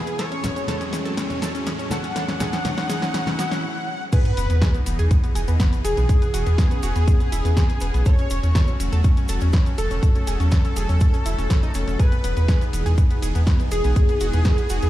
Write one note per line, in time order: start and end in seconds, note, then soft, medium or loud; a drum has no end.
0.00 0.15 B2 medium
0.00 0.15 E3 medium
0.00 0.17 E4 medium
0.00 0.21 G#4 loud
0.00 3.59 G#4 medium
0.00 riser medium
0.07 0.13 B3 medium
0.07 closed hi-hat soft
0.07 maracas soft
0.19 3.60 E2 medium
0.19 3.60 A2 medium
0.19 3.60 F#3 medium
0.19 3.60 G#3 medium
0.19 3.60 C#4 medium
0.19 0.26 A4 loud
0.19 0.83 C#5 loud
0.19 snare medium
0.19 closed hi-hat loud
0.19 high woodblock soft
0.19 maracas medium
0.31 0.38 C#4 medium
0.31 closed hi-hat soft
0.31 maracas soft
0.44 0.50 C#4 medium
0.44 snare medium
0.44 open hi-hat loud
0.44 low conga medium
0.44 maracas medium
0.56 0.62 C#4 medium
0.56 closed hi-hat soft
0.56 high woodblock soft
0.56 maracas soft
0.68 0.75 A4 medium
0.68 snare medium
0.68 closed hi-hat medium
0.68 high conga medium
0.68 maracas soft
0.81 0.87 C#4 medium
0.81 closed hi-hat soft
0.81 high woodblock medium
0.81 maracas soft
0.93 0.99 C#4 medium
0.93 snare medium
0.93 open hi-hat medium
0.93 maracas medium
1.05 1.12 A4 medium
1.05 closed hi-hat soft
1.05 high woodblock soft
1.05 maracas soft
1.17 1.24 C#4 medium
1.17 snare medium
1.17 closed hi-hat loud
1.17 maracas soft
1.30 1.36 C#4 medium
1.30 closed hi-hat soft
1.30 high conga medium
1.30 maracas soft
1.42 1.49 A4 medium
1.42 snare medium
1.42 open hi-hat loud
1.42 high woodblock soft
1.42 maracas medium
1.54 1.61 C#4 medium
1.54 closed hi-hat soft
1.54 maracas soft
1.66 1.73 C#4 medium
1.66 snare medium
1.66 closed hi-hat medium
1.66 high woodblock medium
1.66 maracas soft
1.79 1.85 C#4 medium
1.79 closed hi-hat soft
1.79 maracas soft
1.90 1.98 A4 medium
1.90 4.03 F#5 loud
1.90 snare medium
1.90 open hi-hat medium
1.90 high conga medium
1.90 high woodblock soft
1.90 maracas medium
2.04 2.10 C#4 medium
2.04 closed hi-hat soft
2.04 maracas soft
2.16 2.22 A4 medium
2.16 snare medium
2.16 closed hi-hat loud
2.16 maracas medium
2.28 2.35 C#4 medium
2.28 snare medium
2.28 closed hi-hat soft
2.28 high woodblock soft
2.28 maracas soft
2.40 2.47 G#4 medium
2.40 snare medium
2.40 open hi-hat loud
2.40 low conga loud
2.40 maracas medium
2.53 2.59 C#4 medium
2.53 snare medium
2.53 closed hi-hat soft
2.53 high woodblock medium
2.53 maracas soft
2.65 2.72 C#4 medium
2.65 snare medium
2.65 closed hi-hat loud
2.65 high conga loud
2.65 maracas soft
2.77 2.84 C#4 medium
2.77 snare medium
2.77 closed hi-hat soft
2.77 high woodblock soft
2.77 maracas soft
2.90 2.96 G#4 medium
2.90 snare loud
2.90 open hi-hat medium
2.90 maracas medium
3.02 3.08 C#4 medium
3.02 snare medium
3.02 closed hi-hat soft
3.02 maracas soft
3.14 3.21 C#4 medium
3.14 snare loud
3.14 closed hi-hat loud
3.14 high woodblock soft
3.14 maracas medium
3.26 3.33 C#4 medium
3.26 snare medium
3.26 closed hi-hat soft
3.26 high conga medium
3.26 maracas soft
3.39 3.45 F#4 medium
3.39 snare loud
3.39 open hi-hat loud
3.39 high woodblock medium
3.39 maracas medium
3.51 3.58 C#4 medium
3.51 snare medium
3.51 closed hi-hat soft
3.51 maracas soft
4.12 8.02 B2 medium
4.12 8.02 E3 medium
4.12 6.07 D#4 medium
4.12 8.02 G#4 medium
4.12 4.19 G#4 medium
4.12 4.77 B4 loud
4.12 kick loud
4.12 closed hi-hat loud
4.12 crash loud
4.12 sub drop medium
4.12 maracas medium
4.25 4.31 B3 medium
4.25 closed hi-hat soft
4.25 maracas soft
4.37 4.46 E1 medium
4.37 4.44 B3 medium
4.37 open hi-hat loud
4.37 maracas loud
4.50 4.58 E2 medium
4.50 4.56 B3 medium
4.50 closed hi-hat soft
4.50 maracas soft
4.62 4.68 G#4 medium
4.62 kick loud
4.62 snare loud
4.62 closed hi-hat medium
4.62 maracas soft
4.74 4.81 B3 medium
4.74 closed hi-hat soft
4.74 maracas soft
4.86 4.95 E1 medium
4.86 4.93 B3 medium
4.86 open hi-hat medium
4.86 maracas medium
4.99 5.07 E2 medium
4.99 5.05 G#4 medium
4.99 closed hi-hat soft
4.99 maracas soft
5.11 5.17 B3 medium
5.11 kick loud
5.11 closed hi-hat loud
5.11 maracas soft
5.24 5.30 B3 medium
5.24 closed hi-hat soft
5.24 maracas soft
5.35 5.44 E1 loud
5.35 5.42 G#4 medium
5.35 open hi-hat loud
5.35 maracas medium
5.48 5.56 E2 medium
5.48 5.54 B3 medium
5.48 closed hi-hat soft
5.48 maracas soft
5.60 5.67 B3 medium
5.60 kick loud
5.60 snare loud
5.60 closed hi-hat medium
5.60 maracas medium
5.73 5.79 B3 medium
5.73 closed hi-hat soft
5.73 maracas soft
5.84 5.93 E1 medium
5.84 5.91 G#4 medium
5.84 8.06 G#4 loud
5.84 8.08 G#4 loud
5.84 open hi-hat medium
5.84 maracas medium
5.97 6.06 B1 medium
5.97 6.04 B3 medium
5.97 closed hi-hat soft
5.97 maracas soft
6.09 8.04 C#4 medium
6.09 6.16 G#4 medium
6.09 kick loud
6.09 closed hi-hat medium
6.09 maracas medium
6.22 6.28 B3 medium
6.22 closed hi-hat soft
6.22 maracas soft
6.34 6.43 E1 medium
6.34 6.40 F#4 medium
6.34 open hi-hat loud
6.34 maracas medium
6.46 6.55 E2 medium
6.46 6.53 B3 medium
6.46 closed hi-hat soft
6.46 maracas soft
6.58 6.65 B3 medium
6.58 kick loud
6.58 snare loud
6.58 closed hi-hat medium
6.58 maracas medium
6.71 6.77 B3 medium
6.71 closed hi-hat soft
6.71 maracas soft
6.83 6.92 E1 loud
6.83 6.90 F#4 medium
6.83 open hi-hat medium
6.83 maracas loud
6.96 7.04 E2 medium
6.96 7.02 B3 medium
6.96 closed hi-hat soft
6.96 maracas soft
7.08 7.14 B3 medium
7.08 kick loud
7.08 closed hi-hat medium
7.08 maracas medium
7.20 7.26 B3 medium
7.20 closed hi-hat soft
7.20 maracas soft
7.32 7.41 E1 loud
7.32 7.39 E4 medium
7.32 open hi-hat loud
7.32 maracas loud
7.45 7.53 E2 medium
7.45 7.51 B3 medium
7.45 closed hi-hat soft
7.45 maracas soft
7.57 7.63 B3 medium
7.57 kick loud
7.57 snare loud
7.57 closed hi-hat medium
7.57 maracas medium
7.69 7.76 G#4 medium
7.69 closed hi-hat soft
7.69 maracas soft
7.80 7.90 E1 medium
7.80 7.88 B3 medium
7.80 open hi-hat medium
7.80 maracas medium
7.94 8.02 B1 medium
7.94 8.00 B3 medium
7.94 closed hi-hat soft
7.94 maracas soft
8.06 11.96 C#3 medium
8.06 11.96 F#3 medium
8.06 11.96 A3 medium
8.06 11.96 F#4 loud
8.06 8.13 A4 loud
8.06 8.70 C#5 loud
8.06 kick loud
8.06 closed hi-hat medium
8.06 maracas medium
8.18 8.25 C#4 medium
8.18 closed hi-hat soft
8.18 maracas soft
8.30 8.39 E1 loud
8.30 8.37 C#4 medium
8.30 open hi-hat loud
8.30 maracas loud
8.43 8.51 E2 medium
8.43 8.49 C#4 medium
8.43 closed hi-hat soft
8.43 maracas soft
8.55 8.62 A4 medium
8.55 kick loud
8.55 snare loud
8.55 closed hi-hat medium
8.55 maracas medium
8.67 8.74 C#4 medium
8.67 closed hi-hat soft
8.67 maracas soft
8.80 8.88 E1 medium
8.80 8.86 C#4 medium
8.80 open hi-hat medium
8.80 maracas loud
8.92 9.01 E2 medium
8.92 8.99 A4 medium
8.92 closed hi-hat soft
8.92 maracas soft
9.04 9.11 C#4 medium
9.04 kick loud
9.04 closed hi-hat medium
9.04 maracas medium
9.17 9.23 C#4 medium
9.17 closed hi-hat soft
9.17 maracas soft
9.28 9.38 E1 loud
9.28 9.36 A4 medium
9.28 open hi-hat loud
9.28 maracas loud
9.41 9.50 E2 medium
9.41 9.48 C#4 medium
9.41 closed hi-hat soft
9.41 maracas soft
9.53 9.60 C#4 medium
9.53 kick loud
9.53 snare loud
9.53 closed hi-hat medium
9.53 maracas medium
9.66 9.73 C#4 medium
9.66 closed hi-hat soft
9.66 maracas soft
9.78 9.87 E1 medium
9.78 11.99 A4 medium
9.78 9.85 A4 medium
9.78 12.01 A4 loud
9.78 open hi-hat medium
9.78 maracas medium
9.91 9.99 E1 medium
9.91 9.97 C#4 medium
9.91 closed hi-hat soft
9.91 maracas soft
10.03 10.09 A4 medium
10.03 kick loud
10.03 closed hi-hat medium
10.03 maracas medium
10.15 10.22 C#4 medium
10.15 closed hi-hat soft
10.15 maracas soft
10.27 10.36 E1 medium
10.27 10.34 G#4 loud
10.27 open hi-hat loud
10.27 maracas medium
10.40 10.48 E2 medium
10.40 10.46 C#4 medium
10.40 closed hi-hat soft
10.40 maracas soft
10.51 10.59 C#4 medium
10.51 kick loud
10.51 snare loud
10.51 closed hi-hat medium
10.51 maracas soft
10.65 10.71 C#4 medium
10.65 closed hi-hat soft
10.65 maracas soft
10.76 10.85 E1 loud
10.76 10.83 G#4 medium
10.76 open hi-hat medium
10.76 maracas loud
10.89 10.97 E2 medium
10.89 10.95 C#4 medium
10.89 closed hi-hat soft
10.89 maracas soft
11.00 11.08 C#4 medium
11.00 kick loud
11.00 closed hi-hat medium
11.00 maracas medium
11.14 11.20 C#4 medium
11.14 closed hi-hat soft
11.14 maracas soft
11.26 11.34 E1 medium
11.26 11.32 E4 medium
11.26 open hi-hat loud
11.26 maracas loud
11.38 11.47 E1 medium
11.38 11.45 C#4 medium
11.38 closed hi-hat soft
11.38 maracas soft
11.50 11.57 C#4 medium
11.50 kick loud
11.50 snare loud
11.50 closed hi-hat medium
11.50 maracas medium
11.63 11.69 D#4 medium
11.63 closed hi-hat soft
11.63 maracas soft
11.74 11.84 E1 medium
11.74 11.81 C#4 medium
11.74 open hi-hat medium
11.74 maracas loud
11.88 11.96 E1 medium
11.88 11.94 C#4 medium
11.88 closed hi-hat soft
11.88 maracas soft
11.99 14.90 B2 medium
11.99 14.90 E3 medium
11.99 14.90 G#3 medium
11.99 14.90 D#4 medium
11.99 14.90 G#4 medium
11.99 12.06 G#4 loud
11.99 12.64 B4 loud
11.99 kick loud
11.99 closed hi-hat medium
11.99 maracas medium
12.12 12.18 B3 medium
12.12 closed hi-hat soft
12.12 maracas soft
12.24 12.33 E1 medium
12.24 12.31 B3 medium
12.24 open hi-hat loud
12.24 maracas medium
12.37 12.45 E2 medium
12.37 12.43 B3 medium
12.37 closed hi-hat soft
12.37 maracas soft
12.48 12.55 G#4 loud
12.48 kick loud
12.48 snare loud
12.48 closed hi-hat medium
12.48 maracas medium
12.61 12.68 B3 medium
12.61 closed hi-hat soft
12.61 maracas soft
12.73 12.82 E1 medium
12.73 12.80 B3 medium
12.73 open hi-hat medium
12.73 maracas medium
12.86 12.94 E2 medium
12.86 12.92 G#4 medium
12.86 closed hi-hat soft
12.86 maracas soft
12.98 13.04 B3 medium
12.98 kick loud
12.98 closed hi-hat medium
12.98 maracas medium
13.11 13.17 B3 medium
13.11 closed hi-hat soft
13.11 maracas soft
13.22 13.31 E1 loud
13.22 13.29 G#4 medium
13.22 open hi-hat loud
13.22 maracas loud
13.35 13.43 E2 medium
13.35 13.41 B3 medium
13.35 closed hi-hat soft
13.35 maracas soft
13.47 13.54 B3 medium
13.47 kick loud
13.47 snare loud
13.47 closed hi-hat medium
13.47 maracas soft
13.60 13.66 B3 medium
13.60 closed hi-hat soft
13.60 maracas soft
13.71 13.80 E1 medium
13.71 14.90 G#4 loud
13.71 13.78 G#4 medium
13.71 14.90 G#4 loud
13.71 open hi-hat medium
13.71 maracas medium
13.84 13.92 B1 medium
13.84 13.90 B3 medium
13.84 closed hi-hat soft
13.84 maracas soft
13.96 14.03 G#4 medium
13.96 kick loud
13.96 closed hi-hat medium
13.96 maracas medium
14.09 14.15 B3 medium
14.09 closed hi-hat soft
14.09 maracas soft
14.20 14.29 E1 medium
14.20 14.27 F#4 medium
14.20 open hi-hat loud
14.20 maracas medium
14.33 14.42 E2 medium
14.33 14.40 B3 medium
14.33 closed hi-hat soft
14.33 maracas soft
14.45 14.52 B3 medium
14.45 kick loud
14.45 snare loud
14.45 closed hi-hat medium
14.45 maracas medium
14.58 14.64 B3 medium
14.58 closed hi-hat soft
14.58 maracas soft
14.69 14.79 E1 loud
14.69 14.77 F#4 loud
14.69 open hi-hat medium
14.69 maracas medium
14.82 14.90 E2 medium
14.82 14.89 B3 medium
14.82 closed hi-hat soft
14.82 maracas soft